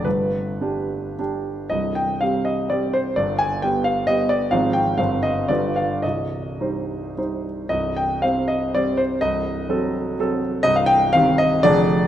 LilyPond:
<<
  \new Staff \with { instrumentName = "Grand piano" } { \time 3/4 \key c \minor \tempo 4 = 120 b'2 r4 | ees''8 g''8 f''8 ees''8 d''8 c''8 | d''8 aes''8 g''8 f''8 ees''8 d''8 | f''8 g''8 f''8 ees''8 d''8 f''8 |
ees''2~ ees''8 r8 | ees''8 g''8 f''8 ees''8 d''8 c''8 | ees''2~ ees''8 r8 | ees''16 f''16 g''8 f''8 ees''8 d''4 | }
  \new Staff \with { instrumentName = "Grand piano" } { \clef bass \time 3/4 \key c \minor <g,, g,>4 <g d' g'>4 <g d' g'>4 | <c,, c,>4 <g c' g'>4 <g c' g'>4 | <g,, g,>4 <g b g'>4 <g b g'>4 | <aes,, aes, f c' c''>4 <g,, g, g c' c''>4 <g,, g, g f' b'>4 |
<c,, c,>4 <g ees' c''>4 <g ees' c''>4 | <c,, c,>4 <g c' c''>4 <g c' c''>4 | <c,, c,>4 <ges c' a'>4 <ges c' a'>4 | <c,, c,>4 <ees c' g'>4 <f,, f, d d' aes'>4 | }
>>